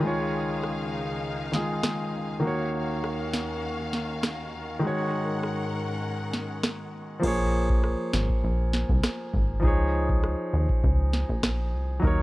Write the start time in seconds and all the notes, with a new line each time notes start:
Already playing: G#4
0.00 C#2 C#3 D#3 G#3 D#4 F5
0.05 F4 C#5
0.64 cross-stick
1.52 D#3 G#3 F4 G#4, snare
1.83 cross-stick, snare
2.40 D#2 D#3 A#3 C#4 F#4 F5
2.45 F#4 C#5
3.04 cross-stick
3.33 snare
3.93 snare
4.23 cross-stick, snare
4.80 D#3 G#3 F#5
4.84 G#2 C#4 F#4 A#4 C#5
5.44 cross-stick
6.33 snare
6.63 cross-stick, snare
7.20 A#1 F3 A#3, kick, crash
7.25 G#4 C#5
7.69 kick
7.84 cross-stick
8.13 G#1, snare
8.29 kick
8.44 A#1
8.73 snare
8.89 C2, kick
9.04 cross-stick, snare
9.34 G#1, kick
9.60 C#2 F3 D#4, kick
9.65 G#4 C#5
10.09 kick
10.23 cross-stick
10.53 D#2
10.69 kick
10.84 C#2, kick
11.14 snare
11.29 A#1, kick
11.43 cross-stick, snare
11.74 C2
12.00 D#2 F#3 D#4, kick
12.05 A#4 C#5